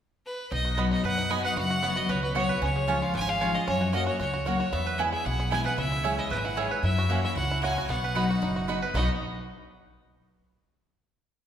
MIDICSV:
0, 0, Header, 1, 6, 480
1, 0, Start_track
1, 0, Key_signature, 5, "major"
1, 0, Tempo, 263620
1, 934, Time_signature, 4, 2, 24, 8
1, 20870, End_track
2, 0, Start_track
2, 0, Title_t, "Fiddle"
2, 0, Program_c, 0, 110
2, 467, Note_on_c, 0, 71, 90
2, 907, Note_off_c, 0, 71, 0
2, 946, Note_on_c, 0, 75, 103
2, 1386, Note_off_c, 0, 75, 0
2, 1683, Note_on_c, 0, 75, 90
2, 1888, Note_off_c, 0, 75, 0
2, 1912, Note_on_c, 0, 78, 105
2, 2386, Note_on_c, 0, 80, 102
2, 2413, Note_off_c, 0, 78, 0
2, 2625, Note_off_c, 0, 80, 0
2, 2633, Note_on_c, 0, 78, 95
2, 2842, Note_off_c, 0, 78, 0
2, 2864, Note_on_c, 0, 78, 105
2, 3589, Note_on_c, 0, 75, 100
2, 3616, Note_off_c, 0, 78, 0
2, 3836, Note_on_c, 0, 73, 92
2, 3863, Note_off_c, 0, 75, 0
2, 4054, Note_off_c, 0, 73, 0
2, 4065, Note_on_c, 0, 71, 85
2, 4277, Note_off_c, 0, 71, 0
2, 4313, Note_on_c, 0, 73, 104
2, 4747, Note_off_c, 0, 73, 0
2, 4796, Note_on_c, 0, 73, 96
2, 5502, Note_on_c, 0, 77, 99
2, 5530, Note_off_c, 0, 73, 0
2, 5730, Note_off_c, 0, 77, 0
2, 5752, Note_on_c, 0, 80, 99
2, 5994, Note_on_c, 0, 77, 106
2, 6021, Note_off_c, 0, 80, 0
2, 6454, Note_on_c, 0, 75, 94
2, 6481, Note_off_c, 0, 77, 0
2, 6685, Note_off_c, 0, 75, 0
2, 6697, Note_on_c, 0, 73, 99
2, 7136, Note_off_c, 0, 73, 0
2, 7169, Note_on_c, 0, 75, 98
2, 7396, Note_off_c, 0, 75, 0
2, 7421, Note_on_c, 0, 73, 87
2, 7632, Note_off_c, 0, 73, 0
2, 7649, Note_on_c, 0, 73, 92
2, 8091, Note_off_c, 0, 73, 0
2, 8128, Note_on_c, 0, 73, 89
2, 8611, Note_on_c, 0, 76, 95
2, 8639, Note_off_c, 0, 73, 0
2, 9086, Note_off_c, 0, 76, 0
2, 9341, Note_on_c, 0, 76, 91
2, 9557, Note_on_c, 0, 78, 91
2, 9585, Note_off_c, 0, 76, 0
2, 10039, Note_off_c, 0, 78, 0
2, 10062, Note_on_c, 0, 80, 96
2, 10282, Note_off_c, 0, 80, 0
2, 10297, Note_on_c, 0, 78, 87
2, 10509, Note_off_c, 0, 78, 0
2, 10525, Note_on_c, 0, 76, 101
2, 11259, Note_on_c, 0, 75, 92
2, 11287, Note_off_c, 0, 76, 0
2, 11466, Note_off_c, 0, 75, 0
2, 11477, Note_on_c, 0, 76, 85
2, 11732, Note_on_c, 0, 78, 86
2, 11760, Note_off_c, 0, 76, 0
2, 11966, Note_on_c, 0, 73, 92
2, 11993, Note_off_c, 0, 78, 0
2, 12437, Note_off_c, 0, 73, 0
2, 12448, Note_on_c, 0, 76, 90
2, 13123, Note_off_c, 0, 76, 0
2, 13179, Note_on_c, 0, 76, 92
2, 13392, Note_off_c, 0, 76, 0
2, 13401, Note_on_c, 0, 78, 87
2, 13849, Note_off_c, 0, 78, 0
2, 13899, Note_on_c, 0, 80, 95
2, 14340, Note_off_c, 0, 80, 0
2, 14383, Note_on_c, 0, 78, 85
2, 15745, Note_off_c, 0, 78, 0
2, 16300, Note_on_c, 0, 75, 84
2, 16526, Note_off_c, 0, 75, 0
2, 20870, End_track
3, 0, Start_track
3, 0, Title_t, "Mandolin"
3, 0, Program_c, 1, 25
3, 1404, Note_on_c, 1, 59, 92
3, 1415, Note_on_c, 1, 66, 91
3, 1422, Note_on_c, 1, 75, 90
3, 1428, Note_on_c, 1, 83, 96
3, 1578, Note_off_c, 1, 59, 0
3, 1583, Note_off_c, 1, 66, 0
3, 1586, Note_off_c, 1, 75, 0
3, 1590, Note_off_c, 1, 83, 0
3, 2356, Note_on_c, 1, 59, 91
3, 2363, Note_on_c, 1, 66, 95
3, 2370, Note_on_c, 1, 75, 98
3, 2380, Note_on_c, 1, 83, 98
3, 2532, Note_off_c, 1, 59, 0
3, 2536, Note_off_c, 1, 66, 0
3, 2540, Note_off_c, 1, 75, 0
3, 2545, Note_off_c, 1, 83, 0
3, 3317, Note_on_c, 1, 59, 91
3, 3329, Note_on_c, 1, 66, 96
3, 3340, Note_on_c, 1, 73, 84
3, 3344, Note_on_c, 1, 78, 88
3, 3492, Note_off_c, 1, 59, 0
3, 3498, Note_off_c, 1, 66, 0
3, 3504, Note_off_c, 1, 73, 0
3, 3505, Note_off_c, 1, 78, 0
3, 4271, Note_on_c, 1, 59, 93
3, 4280, Note_on_c, 1, 66, 107
3, 4287, Note_on_c, 1, 73, 93
3, 4293, Note_on_c, 1, 78, 108
3, 4448, Note_off_c, 1, 59, 0
3, 4453, Note_off_c, 1, 66, 0
3, 4456, Note_off_c, 1, 73, 0
3, 4459, Note_off_c, 1, 78, 0
3, 5237, Note_on_c, 1, 61, 87
3, 5243, Note_on_c, 1, 65, 98
3, 5249, Note_on_c, 1, 73, 96
3, 5261, Note_on_c, 1, 80, 107
3, 5410, Note_off_c, 1, 61, 0
3, 5413, Note_off_c, 1, 65, 0
3, 5416, Note_off_c, 1, 73, 0
3, 5422, Note_off_c, 1, 80, 0
3, 6199, Note_on_c, 1, 61, 91
3, 6208, Note_on_c, 1, 65, 102
3, 6219, Note_on_c, 1, 73, 93
3, 6222, Note_on_c, 1, 80, 95
3, 6371, Note_off_c, 1, 61, 0
3, 6375, Note_off_c, 1, 65, 0
3, 6381, Note_off_c, 1, 73, 0
3, 6382, Note_off_c, 1, 80, 0
3, 7153, Note_on_c, 1, 58, 88
3, 7163, Note_on_c, 1, 66, 95
3, 7168, Note_on_c, 1, 73, 88
3, 7178, Note_on_c, 1, 78, 96
3, 7327, Note_off_c, 1, 58, 0
3, 7332, Note_off_c, 1, 66, 0
3, 7334, Note_off_c, 1, 73, 0
3, 7339, Note_off_c, 1, 78, 0
3, 8115, Note_on_c, 1, 58, 85
3, 8125, Note_on_c, 1, 66, 84
3, 8131, Note_on_c, 1, 73, 92
3, 8139, Note_on_c, 1, 78, 86
3, 8288, Note_off_c, 1, 58, 0
3, 8292, Note_off_c, 1, 66, 0
3, 8295, Note_off_c, 1, 73, 0
3, 8299, Note_off_c, 1, 78, 0
3, 9078, Note_on_c, 1, 59, 89
3, 9086, Note_on_c, 1, 64, 93
3, 9093, Note_on_c, 1, 71, 88
3, 9099, Note_on_c, 1, 80, 99
3, 9248, Note_off_c, 1, 59, 0
3, 9252, Note_off_c, 1, 64, 0
3, 9256, Note_off_c, 1, 71, 0
3, 9259, Note_off_c, 1, 80, 0
3, 10026, Note_on_c, 1, 59, 93
3, 10036, Note_on_c, 1, 64, 103
3, 10042, Note_on_c, 1, 71, 93
3, 10051, Note_on_c, 1, 80, 101
3, 10202, Note_off_c, 1, 59, 0
3, 10207, Note_off_c, 1, 64, 0
3, 10210, Note_off_c, 1, 71, 0
3, 10215, Note_off_c, 1, 80, 0
3, 10987, Note_on_c, 1, 61, 83
3, 10994, Note_on_c, 1, 68, 89
3, 11001, Note_on_c, 1, 76, 104
3, 11010, Note_on_c, 1, 80, 98
3, 11163, Note_off_c, 1, 61, 0
3, 11167, Note_off_c, 1, 68, 0
3, 11170, Note_off_c, 1, 76, 0
3, 11175, Note_off_c, 1, 80, 0
3, 11941, Note_on_c, 1, 61, 84
3, 11959, Note_on_c, 1, 68, 105
3, 11965, Note_on_c, 1, 76, 98
3, 11965, Note_on_c, 1, 80, 101
3, 12121, Note_off_c, 1, 61, 0
3, 12129, Note_off_c, 1, 68, 0
3, 12132, Note_off_c, 1, 80, 0
3, 12133, Note_off_c, 1, 76, 0
3, 12906, Note_on_c, 1, 58, 88
3, 12920, Note_on_c, 1, 64, 97
3, 12924, Note_on_c, 1, 73, 99
3, 12932, Note_on_c, 1, 78, 91
3, 13084, Note_off_c, 1, 58, 0
3, 13091, Note_off_c, 1, 64, 0
3, 13093, Note_off_c, 1, 73, 0
3, 13097, Note_off_c, 1, 78, 0
3, 13875, Note_on_c, 1, 58, 81
3, 13887, Note_on_c, 1, 64, 87
3, 13896, Note_on_c, 1, 73, 93
3, 13898, Note_on_c, 1, 78, 112
3, 14049, Note_off_c, 1, 58, 0
3, 14056, Note_off_c, 1, 64, 0
3, 14060, Note_off_c, 1, 73, 0
3, 14061, Note_off_c, 1, 78, 0
3, 14840, Note_on_c, 1, 59, 95
3, 14847, Note_on_c, 1, 66, 86
3, 14856, Note_on_c, 1, 75, 97
3, 14863, Note_on_c, 1, 83, 97
3, 15013, Note_off_c, 1, 59, 0
3, 15017, Note_off_c, 1, 66, 0
3, 15021, Note_off_c, 1, 75, 0
3, 15025, Note_off_c, 1, 83, 0
3, 15797, Note_on_c, 1, 59, 81
3, 15806, Note_on_c, 1, 66, 103
3, 15814, Note_on_c, 1, 75, 86
3, 15819, Note_on_c, 1, 83, 94
3, 15973, Note_off_c, 1, 59, 0
3, 15977, Note_off_c, 1, 66, 0
3, 15981, Note_off_c, 1, 75, 0
3, 15984, Note_off_c, 1, 83, 0
3, 16281, Note_on_c, 1, 59, 78
3, 16297, Note_on_c, 1, 66, 93
3, 16309, Note_on_c, 1, 75, 91
3, 16319, Note_on_c, 1, 83, 94
3, 16484, Note_off_c, 1, 59, 0
3, 16492, Note_off_c, 1, 66, 0
3, 16498, Note_off_c, 1, 75, 0
3, 16503, Note_off_c, 1, 83, 0
3, 20870, End_track
4, 0, Start_track
4, 0, Title_t, "Five-string banjo"
4, 0, Program_c, 2, 105
4, 942, Note_on_c, 2, 63, 65
4, 1181, Note_on_c, 2, 66, 54
4, 1413, Note_on_c, 2, 59, 62
4, 1615, Note_off_c, 2, 63, 0
4, 1664, Note_on_c, 2, 63, 59
4, 1846, Note_off_c, 2, 66, 0
4, 1912, Note_on_c, 2, 71, 65
4, 2090, Note_off_c, 2, 59, 0
4, 2123, Note_off_c, 2, 63, 0
4, 2144, Note_on_c, 2, 63, 61
4, 2377, Note_on_c, 2, 66, 62
4, 2579, Note_off_c, 2, 71, 0
4, 2630, Note_on_c, 2, 71, 59
4, 2806, Note_off_c, 2, 63, 0
4, 2838, Note_off_c, 2, 66, 0
4, 2856, Note_off_c, 2, 71, 0
4, 2860, Note_on_c, 2, 66, 68
4, 3080, Note_off_c, 2, 66, 0
4, 3102, Note_on_c, 2, 66, 55
4, 3329, Note_on_c, 2, 59, 62
4, 3549, Note_off_c, 2, 66, 0
4, 3570, Note_on_c, 2, 66, 60
4, 3810, Note_on_c, 2, 71, 64
4, 4006, Note_off_c, 2, 59, 0
4, 4036, Note_off_c, 2, 66, 0
4, 4058, Note_on_c, 2, 66, 59
4, 4271, Note_off_c, 2, 66, 0
4, 4293, Note_on_c, 2, 66, 59
4, 4486, Note_off_c, 2, 71, 0
4, 4535, Note_on_c, 2, 71, 60
4, 4767, Note_off_c, 2, 71, 0
4, 4768, Note_on_c, 2, 61, 74
4, 4769, Note_off_c, 2, 66, 0
4, 5022, Note_on_c, 2, 68, 53
4, 5223, Note_off_c, 2, 61, 0
4, 5244, Note_on_c, 2, 61, 65
4, 5502, Note_on_c, 2, 65, 60
4, 5683, Note_off_c, 2, 68, 0
4, 5725, Note_off_c, 2, 61, 0
4, 5732, Note_on_c, 2, 59, 70
4, 5845, Note_off_c, 2, 59, 0
4, 5845, Note_on_c, 2, 61, 68
4, 5980, Note_on_c, 2, 68, 57
4, 6162, Note_off_c, 2, 65, 0
4, 6215, Note_off_c, 2, 61, 0
4, 6215, Note_on_c, 2, 65, 64
4, 6446, Note_off_c, 2, 68, 0
4, 6468, Note_on_c, 2, 68, 60
4, 6689, Note_off_c, 2, 65, 0
4, 6692, Note_off_c, 2, 68, 0
4, 6694, Note_on_c, 2, 61, 81
4, 6934, Note_on_c, 2, 66, 51
4, 7138, Note_off_c, 2, 66, 0
4, 7160, Note_on_c, 2, 66, 63
4, 7365, Note_off_c, 2, 61, 0
4, 7380, Note_off_c, 2, 66, 0
4, 7402, Note_on_c, 2, 66, 60
4, 7618, Note_off_c, 2, 66, 0
4, 7640, Note_on_c, 2, 66, 66
4, 7872, Note_off_c, 2, 66, 0
4, 7894, Note_on_c, 2, 66, 55
4, 8099, Note_off_c, 2, 66, 0
4, 8121, Note_on_c, 2, 66, 62
4, 8353, Note_off_c, 2, 66, 0
4, 8374, Note_on_c, 2, 66, 59
4, 8604, Note_off_c, 2, 66, 0
4, 8607, Note_on_c, 2, 59, 76
4, 8856, Note_on_c, 2, 71, 57
4, 9089, Note_on_c, 2, 64, 57
4, 9281, Note_off_c, 2, 59, 0
4, 9331, Note_on_c, 2, 68, 63
4, 9518, Note_off_c, 2, 71, 0
4, 9572, Note_off_c, 2, 64, 0
4, 9580, Note_on_c, 2, 64, 67
4, 9804, Note_off_c, 2, 68, 0
4, 9826, Note_on_c, 2, 68, 61
4, 10048, Note_off_c, 2, 64, 0
4, 10055, Note_on_c, 2, 64, 65
4, 10297, Note_on_c, 2, 71, 63
4, 10483, Note_off_c, 2, 68, 0
4, 10524, Note_off_c, 2, 64, 0
4, 10525, Note_off_c, 2, 71, 0
4, 10531, Note_on_c, 2, 64, 66
4, 10778, Note_on_c, 2, 68, 54
4, 11011, Note_on_c, 2, 61, 60
4, 11204, Note_off_c, 2, 64, 0
4, 11267, Note_on_c, 2, 64, 60
4, 11439, Note_off_c, 2, 68, 0
4, 11489, Note_on_c, 2, 71, 65
4, 11684, Note_off_c, 2, 61, 0
4, 11715, Note_off_c, 2, 64, 0
4, 11737, Note_on_c, 2, 64, 65
4, 11969, Note_on_c, 2, 68, 62
4, 12164, Note_off_c, 2, 71, 0
4, 12219, Note_on_c, 2, 71, 61
4, 12399, Note_off_c, 2, 64, 0
4, 12446, Note_off_c, 2, 68, 0
4, 12447, Note_off_c, 2, 71, 0
4, 12460, Note_on_c, 2, 64, 61
4, 12715, Note_on_c, 2, 66, 57
4, 12954, Note_on_c, 2, 61, 60
4, 13130, Note_off_c, 2, 64, 0
4, 13194, Note_on_c, 2, 64, 61
4, 13420, Note_off_c, 2, 66, 0
4, 13428, Note_on_c, 2, 66, 63
4, 13618, Note_off_c, 2, 61, 0
4, 13659, Note_off_c, 2, 64, 0
4, 13681, Note_on_c, 2, 64, 59
4, 13907, Note_off_c, 2, 66, 0
4, 13914, Note_on_c, 2, 66, 60
4, 14157, Note_off_c, 2, 66, 0
4, 14164, Note_on_c, 2, 66, 63
4, 14334, Note_off_c, 2, 64, 0
4, 14387, Note_on_c, 2, 59, 79
4, 14642, Note_on_c, 2, 71, 53
4, 14875, Note_on_c, 2, 63, 58
4, 15056, Note_off_c, 2, 59, 0
4, 15114, Note_off_c, 2, 66, 0
4, 15122, Note_on_c, 2, 66, 59
4, 15296, Note_off_c, 2, 71, 0
4, 15322, Note_off_c, 2, 63, 0
4, 15344, Note_on_c, 2, 63, 64
4, 15567, Note_off_c, 2, 66, 0
4, 15589, Note_on_c, 2, 66, 56
4, 15801, Note_off_c, 2, 63, 0
4, 15823, Note_on_c, 2, 63, 55
4, 16067, Note_on_c, 2, 71, 60
4, 16250, Note_off_c, 2, 66, 0
4, 16295, Note_off_c, 2, 71, 0
4, 16295, Note_on_c, 2, 59, 82
4, 16297, Note_off_c, 2, 63, 0
4, 16334, Note_on_c, 2, 63, 90
4, 16372, Note_on_c, 2, 66, 80
4, 16523, Note_off_c, 2, 59, 0
4, 16544, Note_off_c, 2, 63, 0
4, 16564, Note_off_c, 2, 66, 0
4, 20870, End_track
5, 0, Start_track
5, 0, Title_t, "Steel-string acoustic guitar"
5, 0, Program_c, 3, 25
5, 944, Note_on_c, 3, 47, 88
5, 1420, Note_on_c, 3, 54, 92
5, 1434, Note_on_c, 3, 59, 94
5, 1438, Note_on_c, 3, 63, 90
5, 1452, Note_on_c, 3, 66, 91
5, 1850, Note_off_c, 3, 47, 0
5, 1872, Note_off_c, 3, 54, 0
5, 1879, Note_off_c, 3, 59, 0
5, 1881, Note_off_c, 3, 63, 0
5, 1888, Note_off_c, 3, 66, 0
5, 1896, Note_on_c, 3, 42, 89
5, 2378, Note_on_c, 3, 54, 89
5, 2381, Note_on_c, 3, 59, 91
5, 2397, Note_on_c, 3, 63, 94
5, 2401, Note_on_c, 3, 66, 91
5, 2806, Note_off_c, 3, 42, 0
5, 2830, Note_off_c, 3, 54, 0
5, 2832, Note_off_c, 3, 59, 0
5, 2840, Note_off_c, 3, 63, 0
5, 2842, Note_off_c, 3, 66, 0
5, 2858, Note_on_c, 3, 42, 93
5, 3325, Note_on_c, 3, 54, 91
5, 3335, Note_on_c, 3, 59, 100
5, 3345, Note_on_c, 3, 61, 94
5, 3353, Note_on_c, 3, 66, 88
5, 3550, Note_off_c, 3, 66, 0
5, 3564, Note_off_c, 3, 54, 0
5, 3569, Note_off_c, 3, 59, 0
5, 3572, Note_on_c, 3, 66, 61
5, 3574, Note_off_c, 3, 61, 0
5, 3601, Note_on_c, 3, 61, 41
5, 3766, Note_off_c, 3, 42, 0
5, 3797, Note_off_c, 3, 66, 0
5, 3806, Note_on_c, 3, 47, 87
5, 3811, Note_off_c, 3, 61, 0
5, 4275, Note_on_c, 3, 54, 90
5, 4285, Note_on_c, 3, 59, 96
5, 4299, Note_on_c, 3, 61, 81
5, 4309, Note_on_c, 3, 66, 102
5, 4513, Note_off_c, 3, 66, 0
5, 4518, Note_off_c, 3, 54, 0
5, 4524, Note_off_c, 3, 59, 0
5, 4531, Note_off_c, 3, 61, 0
5, 4535, Note_on_c, 3, 66, 61
5, 4557, Note_on_c, 3, 61, 46
5, 4719, Note_off_c, 3, 47, 0
5, 4758, Note_off_c, 3, 66, 0
5, 4765, Note_on_c, 3, 49, 95
5, 4769, Note_off_c, 3, 61, 0
5, 5232, Note_on_c, 3, 53, 84
5, 5246, Note_on_c, 3, 56, 95
5, 5250, Note_on_c, 3, 61, 96
5, 5266, Note_on_c, 3, 65, 94
5, 5677, Note_off_c, 3, 49, 0
5, 5695, Note_off_c, 3, 53, 0
5, 5702, Note_off_c, 3, 56, 0
5, 5704, Note_off_c, 3, 61, 0
5, 5710, Note_on_c, 3, 44, 91
5, 5712, Note_off_c, 3, 65, 0
5, 6216, Note_on_c, 3, 53, 91
5, 6225, Note_on_c, 3, 56, 94
5, 6232, Note_on_c, 3, 61, 84
5, 6237, Note_on_c, 3, 65, 91
5, 6435, Note_off_c, 3, 65, 0
5, 6447, Note_off_c, 3, 53, 0
5, 6452, Note_off_c, 3, 56, 0
5, 6455, Note_off_c, 3, 61, 0
5, 6457, Note_on_c, 3, 65, 56
5, 6479, Note_on_c, 3, 61, 46
5, 6630, Note_off_c, 3, 44, 0
5, 6677, Note_off_c, 3, 65, 0
5, 6688, Note_off_c, 3, 61, 0
5, 6694, Note_on_c, 3, 42, 91
5, 7169, Note_on_c, 3, 54, 84
5, 7174, Note_on_c, 3, 58, 92
5, 7187, Note_on_c, 3, 61, 95
5, 7195, Note_on_c, 3, 66, 99
5, 7601, Note_off_c, 3, 42, 0
5, 7622, Note_off_c, 3, 54, 0
5, 7624, Note_off_c, 3, 58, 0
5, 7631, Note_off_c, 3, 61, 0
5, 7635, Note_off_c, 3, 66, 0
5, 7658, Note_on_c, 3, 49, 85
5, 8124, Note_on_c, 3, 54, 81
5, 8140, Note_on_c, 3, 58, 84
5, 8145, Note_on_c, 3, 61, 94
5, 8156, Note_on_c, 3, 66, 88
5, 8343, Note_off_c, 3, 66, 0
5, 8360, Note_off_c, 3, 54, 0
5, 8365, Note_on_c, 3, 66, 57
5, 8368, Note_off_c, 3, 58, 0
5, 8370, Note_off_c, 3, 61, 0
5, 8394, Note_on_c, 3, 61, 43
5, 8562, Note_off_c, 3, 49, 0
5, 8590, Note_off_c, 3, 66, 0
5, 8605, Note_off_c, 3, 61, 0
5, 8609, Note_on_c, 3, 40, 93
5, 9077, Note_on_c, 3, 52, 83
5, 9095, Note_on_c, 3, 56, 94
5, 9106, Note_on_c, 3, 59, 90
5, 9107, Note_on_c, 3, 64, 100
5, 9315, Note_off_c, 3, 64, 0
5, 9316, Note_off_c, 3, 52, 0
5, 9325, Note_off_c, 3, 56, 0
5, 9331, Note_off_c, 3, 59, 0
5, 9337, Note_on_c, 3, 64, 56
5, 9363, Note_on_c, 3, 59, 46
5, 9518, Note_off_c, 3, 40, 0
5, 9555, Note_off_c, 3, 64, 0
5, 9568, Note_off_c, 3, 59, 0
5, 9578, Note_on_c, 3, 47, 89
5, 10054, Note_on_c, 3, 52, 87
5, 10066, Note_on_c, 3, 56, 93
5, 10070, Note_on_c, 3, 59, 94
5, 10082, Note_on_c, 3, 64, 104
5, 10276, Note_off_c, 3, 64, 0
5, 10284, Note_off_c, 3, 52, 0
5, 10291, Note_off_c, 3, 56, 0
5, 10293, Note_off_c, 3, 59, 0
5, 10298, Note_on_c, 3, 64, 60
5, 10328, Note_on_c, 3, 59, 44
5, 10482, Note_off_c, 3, 47, 0
5, 10516, Note_off_c, 3, 64, 0
5, 10522, Note_on_c, 3, 49, 92
5, 10531, Note_off_c, 3, 59, 0
5, 11000, Note_on_c, 3, 52, 88
5, 11008, Note_on_c, 3, 56, 90
5, 11017, Note_on_c, 3, 61, 96
5, 11026, Note_on_c, 3, 64, 93
5, 11435, Note_off_c, 3, 49, 0
5, 11457, Note_off_c, 3, 52, 0
5, 11461, Note_off_c, 3, 56, 0
5, 11465, Note_off_c, 3, 61, 0
5, 11470, Note_off_c, 3, 64, 0
5, 11478, Note_on_c, 3, 46, 85
5, 11936, Note_off_c, 3, 46, 0
5, 11964, Note_on_c, 3, 44, 93
5, 12420, Note_off_c, 3, 44, 0
5, 12444, Note_on_c, 3, 42, 87
5, 12909, Note_on_c, 3, 52, 87
5, 12925, Note_on_c, 3, 58, 89
5, 12925, Note_on_c, 3, 61, 96
5, 12940, Note_on_c, 3, 66, 100
5, 13358, Note_off_c, 3, 42, 0
5, 13373, Note_off_c, 3, 52, 0
5, 13381, Note_off_c, 3, 58, 0
5, 13382, Note_off_c, 3, 61, 0
5, 13389, Note_off_c, 3, 66, 0
5, 13401, Note_on_c, 3, 44, 87
5, 13860, Note_off_c, 3, 44, 0
5, 13870, Note_on_c, 3, 46, 85
5, 14335, Note_off_c, 3, 46, 0
5, 14369, Note_on_c, 3, 47, 84
5, 14837, Note_on_c, 3, 54, 88
5, 14851, Note_on_c, 3, 59, 90
5, 14856, Note_on_c, 3, 63, 96
5, 14862, Note_on_c, 3, 66, 91
5, 15283, Note_off_c, 3, 47, 0
5, 15300, Note_off_c, 3, 54, 0
5, 15307, Note_off_c, 3, 59, 0
5, 15309, Note_off_c, 3, 63, 0
5, 15312, Note_off_c, 3, 66, 0
5, 15328, Note_on_c, 3, 42, 92
5, 15810, Note_on_c, 3, 54, 80
5, 15818, Note_on_c, 3, 59, 87
5, 15827, Note_on_c, 3, 63, 101
5, 15835, Note_on_c, 3, 66, 90
5, 16244, Note_off_c, 3, 42, 0
5, 16267, Note_off_c, 3, 54, 0
5, 16271, Note_off_c, 3, 59, 0
5, 16276, Note_off_c, 3, 63, 0
5, 16280, Note_off_c, 3, 66, 0
5, 16288, Note_on_c, 3, 47, 82
5, 16297, Note_on_c, 3, 54, 86
5, 16302, Note_on_c, 3, 59, 82
5, 16303, Note_on_c, 3, 63, 94
5, 16321, Note_on_c, 3, 66, 89
5, 16487, Note_off_c, 3, 47, 0
5, 16492, Note_off_c, 3, 54, 0
5, 16494, Note_off_c, 3, 59, 0
5, 16495, Note_off_c, 3, 63, 0
5, 16504, Note_off_c, 3, 66, 0
5, 20870, End_track
6, 0, Start_track
6, 0, Title_t, "Upright bass"
6, 0, Program_c, 4, 32
6, 939, Note_on_c, 4, 35, 89
6, 1667, Note_off_c, 4, 35, 0
6, 1883, Note_on_c, 4, 42, 85
6, 2616, Note_off_c, 4, 42, 0
6, 2847, Note_on_c, 4, 30, 90
6, 3578, Note_off_c, 4, 30, 0
6, 3799, Note_on_c, 4, 37, 86
6, 4532, Note_off_c, 4, 37, 0
6, 4758, Note_on_c, 4, 37, 94
6, 5491, Note_off_c, 4, 37, 0
6, 5712, Note_on_c, 4, 32, 88
6, 6447, Note_off_c, 4, 32, 0
6, 6687, Note_on_c, 4, 42, 98
6, 7416, Note_off_c, 4, 42, 0
6, 7642, Note_on_c, 4, 37, 82
6, 8372, Note_off_c, 4, 37, 0
6, 8602, Note_on_c, 4, 40, 90
6, 9332, Note_off_c, 4, 40, 0
6, 9571, Note_on_c, 4, 35, 87
6, 10298, Note_off_c, 4, 35, 0
6, 10516, Note_on_c, 4, 37, 94
6, 11249, Note_off_c, 4, 37, 0
6, 11482, Note_on_c, 4, 32, 86
6, 12213, Note_off_c, 4, 32, 0
6, 12431, Note_on_c, 4, 42, 100
6, 13168, Note_off_c, 4, 42, 0
6, 13392, Note_on_c, 4, 37, 86
6, 14129, Note_off_c, 4, 37, 0
6, 14359, Note_on_c, 4, 35, 92
6, 15095, Note_off_c, 4, 35, 0
6, 15337, Note_on_c, 4, 30, 86
6, 16067, Note_off_c, 4, 30, 0
6, 16277, Note_on_c, 4, 35, 99
6, 16514, Note_off_c, 4, 35, 0
6, 20870, End_track
0, 0, End_of_file